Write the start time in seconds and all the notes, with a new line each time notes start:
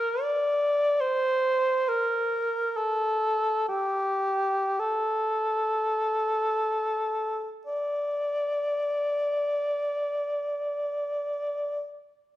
Already playing: A#4
0.22 D5
1.01 C5
1.89 A#4
2.77 A4
3.69 G4
4.79 A4
7.67 D5